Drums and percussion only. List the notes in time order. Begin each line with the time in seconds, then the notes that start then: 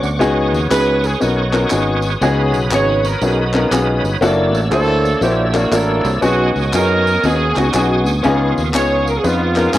0.03 tambourine
0.21 tambourine
0.54 tambourine
0.71 clap, tambourine
1.04 tambourine
1.21 tambourine
1.53 clap, tambourine
1.70 clap, tambourine
2.02 tambourine
2.22 tambourine
2.54 tambourine
2.71 clap, tambourine
3.05 tambourine
3.21 tambourine
3.54 clap, tambourine
3.72 clap, tambourine
4.05 tambourine
4.22 tambourine
4.55 tambourine
4.72 clap, tambourine
5.05 tambourine
5.22 tambourine
5.54 clap, tambourine
5.72 clap, tambourine
6.05 tambourine
6.22 tambourine
6.56 tambourine
6.73 clap, tambourine
7.07 tambourine
7.23 tambourine
7.56 clap, tambourine
7.74 clap, tambourine
8.06 tambourine
8.24 tambourine
8.57 tambourine
8.74 clap, tambourine
9.07 tambourine
9.24 tambourine
9.56 clap, tambourine
9.74 clap, tambourine